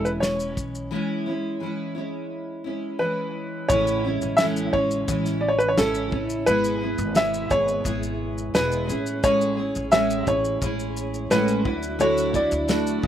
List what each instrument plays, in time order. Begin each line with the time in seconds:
Already playing: upright bass E1, steel-string acoustic guitar G#3 C#4 E4
0.05 upright piano B4, shaker
0.20 steel-string acoustic guitar E3 G#3 C#4 E4, upright piano C#5, snare, shaker
0.40 shaker
0.57 upright bass B1, kick, shaker
0.75 shaker
0.91 steel-string acoustic guitar E3 G#3 C#4 E4
1.26 steel-string acoustic guitar G#3 C#4 E4
1.60 steel-string acoustic guitar E3 G#3 C#4 E4
1.95 steel-string acoustic guitar G#3 C#4 E4
2.64 steel-string acoustic guitar G#3 C#4 E4
2.99 steel-string acoustic guitar E3 G#3 C#4 E4, upright piano B4
3.68 upright bass A1, steel-string acoustic guitar A2 E3 G#3 C#4 E4, tonewheel organ C#3 E3 C#4, upright piano C#5, kick, shaker
3.87 shaker
4.04 steel-string acoustic guitar G#3 C#4 E4
4.21 upright bass A1, shaker
4.37 steel-string acoustic guitar A2 E3 G#3, upright piano E5, snare, shaker
4.41 steel-string acoustic guitar C#4 E4
4.57 shaker
4.73 upright bass A1, steel-string acoustic guitar G#3 C#4 E4, upright piano C#5, kick
4.91 shaker
5.07 upright bass A1, steel-string acoustic guitar E3 G#3 C#4 E4, kick, shaker
5.26 snare, shaker
5.41 upright piano D5
5.48 upright piano C#5
5.58 upright piano B4, shaker
5.68 upright piano C#5
5.77 upright bass G#1, steel-string acoustic guitar E3 C#4 E4, upright piano A4, snare, shaker
5.94 shaker
6.11 upright bass A1, steel-string acoustic guitar C#4 E4, kick
6.30 shaker
6.46 upright bass G#1, tonewheel organ B2 G#3 E4, steel-string acoustic guitar G#3 B3 E4 G#4, upright piano B4, shaker
6.64 shaker
6.81 steel-string acoustic guitar B3 E4 G#4
6.98 upright bass G#1, shaker
7.14 steel-string acoustic guitar G#3 B3 E4 G#4, upright piano E5, snare, shaker
7.34 shaker
7.49 upright bass G#1, steel-string acoustic guitar B3 E4 G#4, upright piano C#5, kick, shaker
7.68 shaker
7.84 upright bass G#1, steel-string acoustic guitar G#3 B3 E4 G#4, kick, shaker
8.03 shaker
8.38 shaker
8.54 upright bass E1, steel-string acoustic guitar G#3 B3 E4 G#4, upright piano B4, snare, shaker
8.72 shaker
8.88 upright bass A1, tonewheel organ A2 C#4, steel-string acoustic guitar C#4 E4 G#4, shaker
9.06 shaker
9.23 steel-string acoustic guitar A2 G#3 C#4 E4 G#4, upright piano C#5, kick, shaker
9.41 shaker
9.57 steel-string acoustic guitar C#4 E4 G#4
9.75 upright bass A1, shaker
9.91 steel-string acoustic guitar A2 G#3 C#4 E4 G#4, upright piano E5, snare, shaker
10.10 shaker
10.26 upright bass A1, steel-string acoustic guitar C#4 E4 G#4, upright piano C#5, kick, shaker
10.45 shaker
10.61 upright bass A1, steel-string acoustic guitar G#3 C#4 E4 G#4, kick, shaker
10.79 shaker
10.97 shaker
11.14 shaker
11.30 upright bass A1, steel-string acoustic guitar A2 G#3 C#4 E4 G#4, upright piano B4, snare, shaker
11.48 shaker
11.65 upright bass D2, tonewheel organ D3 F#3 E4, steel-string acoustic guitar D4 E4 F#4, kick
11.83 shaker
11.99 steel-string acoustic guitar D3 A3 D4 E4 F#4, upright piano C#5, shaker
12.18 shaker
12.33 steel-string acoustic guitar D4 E4 F#4, upright piano D5, kick, shaker
12.51 upright bass D2, shaker
12.67 steel-string acoustic guitar D3 A3 D4 E4 F#4, snare, shaker
12.87 shaker
13.02 upright bass D2, steel-string acoustic guitar E4 F#4, kick